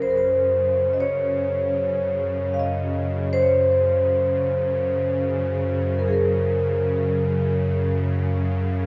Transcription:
Already playing: F#2 C#3
0.02 C5
0.10 A#4
0.17 C5
0.94 D#5
1.00 C#5
2.54 F5
2.59 D#5
3.33 C5
3.42 C#5
3.47 C5
5.99 A#4
6.08 G#4
6.13 A#4

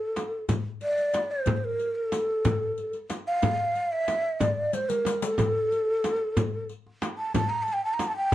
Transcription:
Already playing: A4
0.16 riq, darbuka tek, frame drum
0.49 riq, darbuka dum, frame drum
0.81 D5, riq, darbuka ka
0.98 riq, darbuka ka
1.14 riq, darbuka tek, frame drum
1.31 C5
1.46 riq, darbuka dum, frame drum
1.57 C5
1.64 A#4
1.79 riq, darbuka ka
1.95 A4
2.12 riq, darbuka tek, frame drum
2.45 riq, darbuka dum, frame drum
2.78 riq, darbuka ka
2.93 riq, darbuka ka
3.10 riq, darbuka tek, frame drum
3.27 F5
3.42 riq, frame drum, darbuka dum
3.75 riq
3.92 E5
4.08 riq, darbuka tek, frame drum
4.40 D5, riq, frame drum, darbuka dum
4.73 C5, riq
4.89 A#4, riq, darbuka ka
5.05 riq, darbuka tek, frame drum
5.22 A4, riq
5.38 riq, frame drum, darbuka dum
5.72 riq, darbuka ka
6.04 riq, darbuka tek, frame drum
6.37 riq, frame drum, darbuka dum
6.69 riq, darbuka ka
6.87 darbuka ka
7.02 riq, darbuka tek, frame drum
7.18 A5
7.34 A5, riq, darbuka dum, frame drum
7.49 A#5
7.63 A5
7.67 riq, darbuka ka
7.73 G5
7.85 A5
7.94 A#5
7.99 riq, darbuka tek, frame drum
8.07 A5
8.17 G5

